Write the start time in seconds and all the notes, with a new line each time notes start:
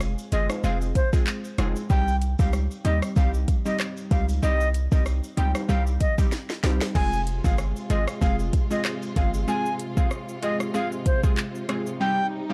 Already playing: F1
0.00 cross-stick, shaker, maracas
0.18 shaker, maracas
0.32 G1 G#3 C4 F4 G#4 D#5, closed hi-hat, shaker, maracas
0.50 cross-stick, high timbale, shaker, maracas
0.64 F1 G#3 C4 F4 G#4 F5, maracas, shaker
0.81 maracas, shaker
0.95 C5, kick, closed hi-hat, maracas, shaker
1.13 G#3 C4 F4 G#4, kick, maracas, shaker
1.27 clap, shaker, maracas
1.44 maracas, shaker
1.58 F1 G#3 C4 F4 G#4, cross-stick, closed hi-hat, high timbale, shaker, maracas
1.76 shaker, maracas
1.90 C2 G3 C4 D#4 G4 G5, kick, shaker, maracas
2.08 maracas, shaker
2.22 closed hi-hat, shaker, maracas
2.39 C#2 G3 C4 D#4 G4 F5, kick, maracas, shaker
2.53 cross-stick, shaker, maracas
2.71 shaker, maracas
2.85 D#2 G3 C4 D#4 G4 D#5, closed hi-hat, maracas, shaker
3.02 cross-stick, maracas, shaker
3.16 C2 G3 C4 D#4 G4 F5, kick, maracas, shaker
3.34 maracas, shaker
3.48 kick, closed hi-hat, maracas, shaker
3.65 G3 C4 D#4 G4 D#5, maracas, shaker
3.79 cross-stick, clap, shaker, maracas
3.97 maracas, shaker
4.11 C#2 G3 C4 D#4 G4 F5, kick, closed hi-hat, shaker, maracas
4.29 shaker, maracas
4.42 C2 G3 C4 D#4 G4 D#5, maracas, shaker
4.60 maracas, shaker
4.74 closed hi-hat, shaker, maracas
4.92 C2 G3 C4 D#4 G4 D#5, kick, maracas, shaker
5.06 cross-stick, shaker, maracas
5.24 shaker, maracas
5.37 C#2 G3 C4 D#4 G4 G5, closed hi-hat, shaker
5.55 cross-stick, high timbale, shaker, maracas
5.69 C2 G3 C4 D#4 G4 F5, maracas, shaker
5.87 maracas, shaker
6.01 D#5, kick, closed hi-hat, shaker, maracas
6.18 G3 C4 D#4 G4, kick, shaker, maracas
6.32 snare, shaker, maracas
6.50 snare, maracas, shaker
6.63 C2 G3 C4 D#4 G4, snare, closed hi-hat, high timbale, shaker, maracas
6.81 snare, shaker, maracas
6.95 F1 C3 G#3 C4 F4 G#4 G#5, kick, crash, maracas
7.13 maracas, shaker
7.27 closed hi-hat, shaker, maracas
7.44 G1 G#3 C4 F4 G#4 F5, kick, maracas, shaker
7.58 cross-stick, shaker, maracas
7.76 shaker, maracas
7.90 G#1 G#3 C4 F4 G#4 D#5, closed hi-hat, shaker, maracas
8.08 cross-stick, shaker, maracas
8.21 F1 G#3 C4 F4 G#4 F5, kick, maracas, shaker
8.39 maracas, shaker
8.53 kick, closed hi-hat, shaker, maracas
8.71 G#3 C4 F4 G#4 D#5, maracas, shaker
8.85 cross-stick, clap, shaker, maracas
9.02 maracas, shaker
9.16 G1 G#3 C4 F4 G#4 F5, kick, closed hi-hat, shaker, maracas
9.34 shaker, maracas
9.47 G#3 C4 F4 G#4 G#5, shaker
9.66 shaker
9.80 closed hi-hat, shaker
9.97 G#3 C4 F4 G#4 F5, kick, shaker
10.11 cross-stick, shaker
10.29 shaker
10.42 G#3 C4 F4 G#4 D#5, closed hi-hat, shaker
10.60 cross-stick, shaker
10.74 G#3 C4 F4 G#4 F5, shaker
10.92 shaker
11.06 C5, kick, closed hi-hat, shaker
11.23 G#3 C4 F4 G#4, kick, shaker
11.37 clap, shaker
11.55 shaker
11.69 G#3 C4 F4 G#4, cross-stick, closed hi-hat, shaker
11.86 shaker
12.00 G3 C4 D#4 G4 G5
12.50 G3 C4 D#4 G4 F5